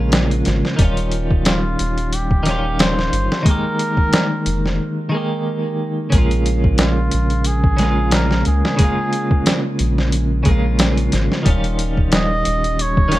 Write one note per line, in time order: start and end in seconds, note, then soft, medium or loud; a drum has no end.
0.00 0.43 A#1 medium
0.00 0.74 C#3 medium
0.00 0.75 G#3 medium
0.00 0.77 A#3 medium
0.00 0.78 F4 loud
0.12 snare loud
0.12 closed hi-hat medium
0.31 closed hi-hat soft
0.45 0.63 G#1 loud
0.45 snare soft
0.45 closed hi-hat medium
0.65 snare soft
0.77 1.76 D#1 loud
0.77 2.41 D#3 medium
0.77 2.42 G3 medium
0.77 kick loud
0.77 closed hi-hat medium
0.82 2.44 C#4 medium
0.82 2.45 F4 loud
0.97 closed hi-hat soft
1.12 closed hi-hat medium
1.31 kick medium
1.45 2.16 F4 medium
1.45 snare loud
1.45 closed hi-hat medium
1.79 3.10 D#1 medium
1.79 closed hi-hat medium
1.98 closed hi-hat soft
2.13 2.83 G4 loud
2.13 closed hi-hat medium
2.31 kick medium
2.43 3.41 D#3 medium
2.43 3.42 G3 medium
2.43 snare soft
2.43 closed hi-hat medium
2.48 3.44 C#4 medium
2.48 3.45 F4 medium
2.79 3.47 C5 loud
2.79 snare loud
2.79 closed hi-hat medium
2.99 snare soft
3.13 3.29 G1 medium
3.13 closed hi-hat medium
3.32 snare medium
3.43 5.08 D#3 medium
3.43 5.09 G#3 medium
3.43 kick loud
3.43 closed hi-hat medium
3.48 5.10 A#3 medium
3.48 5.12 G4 loud
3.48 4.77 A#4 loud
3.79 closed hi-hat medium
3.97 kick medium
4.13 snare loud
4.13 closed hi-hat medium
4.46 4.80 F1 medium
4.46 closed hi-hat medium
4.66 snare soft
5.09 6.08 D#3 medium
5.09 6.09 G#3 medium
5.14 6.10 A#3 medium
5.14 6.11 G4 medium
6.10 7.10 A#1 loud
6.10 7.74 C#3 medium
6.10 7.76 G#3 medium
6.10 kick loud
6.10 closed hi-hat medium
6.15 7.77 A#3 medium
6.15 7.78 F4 loud
6.31 closed hi-hat soft
6.46 closed hi-hat medium
6.64 kick medium
6.78 7.48 F4 medium
6.78 snare loud
6.78 closed hi-hat medium
7.11 8.44 A#1 medium
7.11 closed hi-hat medium
7.30 closed hi-hat soft
7.44 8.15 G#4 loud
7.44 closed hi-hat medium
7.64 kick medium
7.77 8.74 C#3 medium
7.77 8.76 G#3 medium
7.77 snare soft
7.77 closed hi-hat medium
7.82 8.77 A#3 medium
7.82 8.78 F4 loud
8.11 8.46 A#4 loud
8.11 snare loud
8.11 closed hi-hat medium
8.31 snare soft
8.45 8.63 C#2 medium
8.45 9.76 G#4 loud
8.45 closed hi-hat medium
8.65 snare soft
8.76 10.41 C#3 medium
8.76 10.42 G#3 medium
8.76 kick loud
8.76 closed hi-hat medium
8.82 10.44 A#3 medium
8.82 10.45 F4 loud
9.13 closed hi-hat medium
9.31 kick medium
9.46 snare loud
9.46 closed hi-hat medium
9.79 10.44 A#1 medium
9.79 closed hi-hat medium
9.98 snare soft
10.12 closed hi-hat medium
10.43 11.10 A#1 medium
10.43 11.41 C#3 medium
10.43 11.42 G#3 medium
10.43 kick medium
10.43 closed hi-hat medium
10.49 11.44 A#3 medium
10.49 11.45 F4 loud
10.79 snare loud
10.79 closed hi-hat medium
10.97 closed hi-hat soft
11.12 11.29 G#1 loud
11.12 snare soft
11.12 closed hi-hat medium
11.32 snare soft
11.43 12.44 D#1 medium
11.43 13.08 D#3 medium
11.43 13.09 G3 medium
11.43 kick loud
11.43 closed hi-hat medium
11.48 13.10 C#4 medium
11.48 13.11 F4 medium
11.64 closed hi-hat soft
11.79 closed hi-hat medium
11.97 kick medium
12.12 12.83 D#5 loud
12.12 snare loud
12.12 closed hi-hat medium
12.45 13.19 D#1 medium
12.45 closed hi-hat medium
12.64 closed hi-hat soft
12.79 13.19 C#5 loud
12.79 closed hi-hat medium
12.97 kick medium
13.09 13.19 D#3 medium
13.09 13.19 G3 medium
13.09 snare soft
13.09 closed hi-hat medium
13.14 13.19 C#4 medium